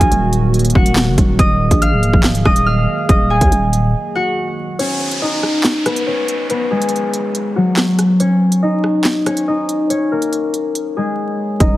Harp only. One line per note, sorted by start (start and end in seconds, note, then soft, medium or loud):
0.00 2.18 G#4 medium
0.00 1.40 D#5 medium
0.00 0.81 F5 medium
0.00 1.40 G#5 medium
0.00 0.86 D#6 medium
0.00 0.36 F6 medium
0.75 1.88 F#4 medium
0.75 1.88 F#5 medium
1.39 2.46 D#5 medium
1.39 2.45 D#6 loud
1.82 2.67 F5 medium
1.82 2.66 F6 medium
2.45 3.09 D#5 medium
2.45 3.08 D#6 medium
2.66 4.21 F5 medium
2.66 3.76 F6 medium
3.09 4.88 D#5 medium
3.09 4.27 D#6 medium
3.30 5.58 G#4 medium
3.30 4.80 G#5 medium
4.15 6.60 F#4 medium
4.15 5.76 F#5 medium
4.79 6.07 C#4 medium
4.79 6.06 C#5 loud
5.22 7.93 D#4 medium
5.22 7.00 D#5 medium
5.86 6.50 B3 medium
5.86 6.49 B4 medium
6.07 8.20 C#4 medium
6.07 7.98 C#5 medium
6.50 9.61 B3 medium
6.50 8.55 B4 medium
6.71 8.25 G#3 medium
6.71 8.98 G#4 medium
7.56 8.25 F#3 medium
7.56 10.00 F#4 medium
8.20 9.27 C#4 medium
8.20 9.26 C#5 loud
8.63 9.48 D#4 medium
8.63 9.47 D#5 medium
9.26 9.90 C#4 medium
9.26 9.89 C#5 medium
9.48 11.61 D#4 medium
9.48 11.26 D#5 medium
9.90 11.77 C#4 medium
9.90 11.77 C#5 medium
10.12 11.77 A#3 medium
10.12 11.77 A#4 medium
10.97 11.65 G#3 medium
10.97 11.77 G#4 medium
11.60 11.77 D#4 medium
11.60 11.77 D#5 loud